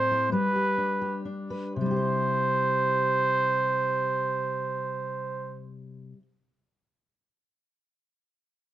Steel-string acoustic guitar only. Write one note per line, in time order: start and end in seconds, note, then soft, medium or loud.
0.00 0.32 A2 medium
0.00 0.30 A3 medium
0.00 0.33 C4 soft
0.00 0.30 C5 medium
0.11 0.32 E4 soft
0.32 1.80 G3 medium
0.32 0.54 G4 soft
0.56 1.00 G4 soft
0.78 1.24 D4 soft
1.02 1.72 G4 soft
1.25 1.72 D4 soft
1.50 1.72 B4 soft
1.76 6.13 C3 soft
1.81 6.17 G3 soft
1.86 6.22 E4 soft
1.91 6.27 G4 soft
1.96 6.32 C5 soft